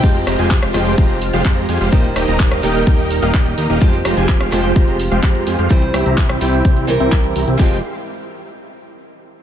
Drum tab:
HH |xxoxxxoxxxoxxxox|xxoxxxoxxxoxxxox|xxoxxxoxxxoxxxox|xxoxxxoxxxoxxxox|
SH |x-xxx-xxx-xxx-xx|x-xxx-xxx-xxx-xx|x-xxx-xxx-xxx-xx|x-xxx-xxx-xxx-xx|
CP |----x-------x---|----x-------x---|----x-------x---|----x-------x---|
SD |--r--rr---------|--r--r----------|--r--rr---------|--r--r----------|
BD |o---o---o---o---|o---o---o---o---|o---o---o---o---|o---o---o---o---|

HH |o---------------|
SH |----------------|
CP |----------------|
SD |----------------|
BD |o---------------|